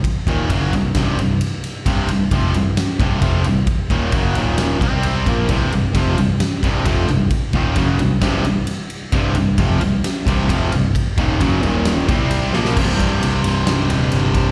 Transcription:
<<
  \new Staff \with { instrumentName = "Distorted electric guitar" } { \clef bass \time 4/4 \key ees \lydian \tempo 4 = 132 r8 <ees, bes, ees>8 <fis, des fis>8 <c, g,>8 <c, g, c>8 <c, g,>8 r4 | <c, g, c>8 <c, g,>8 <f, c f>8 <c, g,>8 r8 <c, g, c>8 <f, c f>8 <c, g,>8 | r8 <ees, bes, ees>8 <fis, des fis>8 <ees, bes, ees>4 <c g c'>4 <bes, f bes>8 | <c, g, c>8 <c, g,>8 <f, c f>8 <c, g,>8 r8 <c, g, c>8 <f, c f>8 <c, g,>8 |
r8 <ees, bes, ees>8 <fis, des fis>8 <c, g,>8 <c, g, c>8 <c, g,>8 r4 | <c, g, c>8 <c, g,>8 <f, c f>8 <c, g,>8 r8 <c, g, c>8 <f, c f>8 <c, g,>8 | r8 <ees, bes, ees>8 <fis, des fis>8 <ees, bes, ees>4 <c g c'>4 <bes, f bes>8 | <c, g, c>1 | }
  \new Staff \with { instrumentName = "Distorted electric guitar" } { \clef bass \time 4/4 \key ees \lydian r8 <ees, bes, ees>8 <fis, des fis>8 <c, g,>8 <c, g, c>8 <c, g,>8 r4 | <c, g, c>8 <c, g,>8 <f, c f>8 <c, g,>8 r8 <c, g, c>8 <f, c f>8 <c, g,>8 | r8 <ees, bes, ees>8 <fis, des fis>8 <ees, bes, ees>4 <c g c'>4 <bes, f bes>8 | <c, g, c>8 <c, g,>8 <f, c f>8 <c, g,>8 r8 <c, g, c>8 <f, c f>8 <c, g,>8 |
r8 <ees, bes, ees>8 <fis, des fis>8 <c, g,>8 <c, g, c>8 <c, g,>8 r4 | <c, g, c>8 <c, g,>8 <f, c f>8 <c, g,>8 r8 <c, g, c>8 <f, c f>8 <c, g,>8 | r8 <ees, bes, ees>8 <fis, des fis>8 <ees, bes, ees>4 <c g c'>4 <bes, f bes>8 | <c, g, c>1 | }
  \new Staff \with { instrumentName = "Distorted electric guitar" } { \clef bass \time 4/4 \key ees \lydian r1 | r1 | r1 | <c, g, c>8 <c, g,>8 <f, c f>8 <c, g,>8 r8 <c, g, c>8 <f, c f>8 <c, g,>8 |
r8 <ees, bes, ees>8 <fis, des fis>8 <c, g,>8 <c, g, c>8 <c, g,>8 r4 | <c, g, c>8 <c, g,>8 <f, c f>8 <c, g,>8 r8 <c, g, c>8 <f, c f>8 <c, g,>8 | r8 <ees, bes, ees>8 <fis, des fis>8 <ees, bes, ees>4 <c g c'>4 <bes, f bes>8 | r1 | }
  \new Staff \with { instrumentName = "Picked electric bass" } { \clef bass \time 4/4 \key ees \lydian r8 ees,,8 fis,,8 c,,8 c,,8 c,,8 r4 | c,,8 c,,8 f,,8 c,,8 r8 c,,8 f,,8 c,,8 | r8 ees,,8 fis,,8 ees,,4 c,4 bes,,8 | c,,8 c,,8 f,,8 c,,8 r8 c,,8 f,,8 c,,8 |
r8 ees,,8 fis,,8 c,,8 c,,8 c,,8 r4 | c,,8 c,,8 f,,8 c,,8 r8 c,,8 f,,8 c,,8 | r8 ees,,8 fis,,8 ees,,4 c,4 bes,,8 | c,,8 c,,8 c,,8 c,,8 c,,8 ees,,8 g,,8 c,,8 | }
  \new DrumStaff \with { instrumentName = "Drums" } \drummode { \time 4/4 <bd cymr>8 <bd cymr>8 <bd cymr>8 cymr8 <bd cymr sn>8 cymr8 cymr8 <cymr sn>8 | <bd cymr>8 cymr8 <bd cymr>8 cymr8 <cymr sn>8 <bd cymr>8 <bd cymr>8 cymr8 | <bd cymr>8 <bd cymr>8 <bd cymr>8 cymr8 <cymr sn>8 <bd cymr>8 cymr8 <bd cymr sn>8 | <bd cymr>8 cymr8 <bd cymr>8 cymr8 <cymr sn>8 <bd cymr>8 <bd cymr>8 <cymr sn>8 |
<bd cymr>8 <bd cymr>8 <bd cymr>8 cymr8 <bd cymr sn>8 cymr8 cymr8 cymr8 | <bd cymr>8 cymr8 <bd cymr>8 cymr8 <cymr sn>8 <bd cymr>8 <bd cymr>8 cymr8 | <bd cymr>8 <bd cymr>8 <bd cymr>8 cymr8 <cymr sn>8 <bd cymr>8 cymr8 sn16 sn16 | <cymc bd>8 <bd cymr>8 cymr8 cymr8 <cymr sn>8 cymr8 cymr8 <bd cymr>8 | }
>>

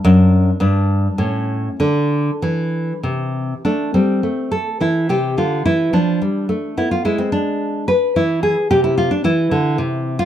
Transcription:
\new Staff \with { instrumentName = "Nylon-string guitar" } { \time 3/4 \key c \mixolydian \tempo 4 = 107 << { d'4 d'4 cis'4 | d'2. | \key a \minor d'8 c'4 a'8 e'8 g'8 | f'8 e'8 d'4. e'16 f'16 |
e'16 c'16 d'4 b'8 e'8 gis'8 | g'16 e'16 f'16 d'16 e'4.~ e'16 f'16 | } \\ { fis,4 g,4 a,4 | d4 e4 c4 | a8 g8 a4 e8 c8 | d8 e8 f8 g8 a8 b8 |
gis2 e4 | c4 e8 d8 c4 | } >> }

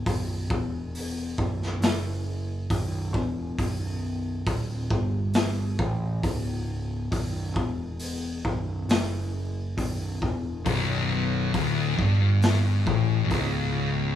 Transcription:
<<
  \new Staff \with { instrumentName = "Distorted electric guitar" } { \clef bass \time 4/4 \key b \minor \tempo 4 = 68 r1 | r1 | r1 | b,,4 d,8 g,4 a,8 cis,4 | }
  \new Staff \with { instrumentName = "Distorted electric guitar" } { \clef bass \time 4/4 \key b \minor r1 | r1 | r1 | b,,4 d,8 g,4 a,8 cis,4 | }
  \new Staff \with { instrumentName = "Picked electric bass" } { \clef bass \time 4/4 \key b \minor b,,,8 e,,4 b,,,8 fis,,4 b,,,8 e,,8 | b,,,4 d,,8 g,,4 a,,8 cis,,4 | b,,,8 e,,4 b,,,8 fis,,4 b,,,8 e,,8 | b,,,4 d,,8 g,,4 a,,8 cis,,4 | }
  \new DrumStaff \with { instrumentName = "Drums" } \drummode { \time 4/4 <hho bd>8 bd8 hho8 bd16 sn16 <hho sn>4 <hho bd>8 bd8 | <hho bd>4 <hho bd>8 bd8 <hho sn>8 bd8 <hho bd>4 | <hho bd>8 bd8 hho8 bd8 <hho sn>4 <hho bd>8 bd8 | <hho bd>4 <hho bd>8 bd8 <hho sn>8 bd8 <hho bd>4 | }
>>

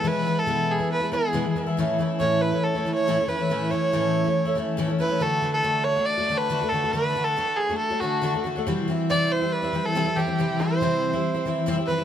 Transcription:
<<
  \new Staff \with { instrumentName = "Fiddle" } { \time 4/4 \key a \major \tempo 4 = 140 b'8. a'8. gis'8 b'8 gis'4 r8 | r4 cis''8 b'8 a'8. cis''8. b'8~ | b'8 cis''2 r4 b'8 | a'8. a'8. cis''8 d''8. b'8. a'8 |
b'8. a'8. gis'8 a'8 fis'4 r8 | r4 d''8 c''8 b'8. a'8. g'8~ | g'8 c''2 r4 b'8 | }
  \new Staff \with { instrumentName = "Twelve-string acoustic guitar" } { \time 4/4 \key a \major <b, e gis b e'>8 <e gis b e'>8 <b, e gis b e'>8. <gis b e'>8 <gis b e'>16 <e gis b e'>8 <b, e gis b e'>16 <gis b e'>16 <e gis b e'>16 <gis b e'>16 | <a, e a cis' e'>8 <e a cis' e'>8 <a, e a cis' e'>8. <a cis' e'>8 <a cis' e'>16 <e a cis' e'>8 <a, e a cis' e'>16 <a cis' e'>16 <e a cis' e'>16 <a cis' e'>16 | <a, e a cis' e'>8 <e a cis' e'>8 <a, e a cis' e'>8. <a cis' e'>8 <a cis' e'>16 <e a cis' e'>8 <a, e a cis' e'>16 <a cis' e'>16 <e a cis' e'>16 <a cis' e'>16 | <d a d' fis'>8 <d a d' fis'>8 <d a d' fis'>8. <a d' fis'>8 <a d' fis'>16 <d a d' fis'>8 <d a d' fis'>16 <a d' fis'>16 <d a d' fis'>16 <a d' fis'>16 |
<d a d' fis'>8 <d a d' fis'>8 <d a d' fis'>8. <a d' fis'>8 <a d' fis'>16 <d a d' fis'>8 <d a d' fis'>16 <a d' fis'>16 <d a d' fis'>16 <a d' fis'>16 | <c e g c' e'>8 <e g c' e'>8 <c e g c' e'>8. <g c' e'>8 <g c' e'>16 <e g c' e'>8 <c e g c' e'>16 <g c' e'>16 <e g c' e'>16 <g c' e'>16 | <c e g c' e'>8 <e g c' e'>8 <c e g c' e'>8. <g c' e'>8 <g c' e'>16 <e g c' e'>8 <c e g c' e'>16 <g c' e'>16 <e g c' e'>16 <g c' e'>16 | }
>>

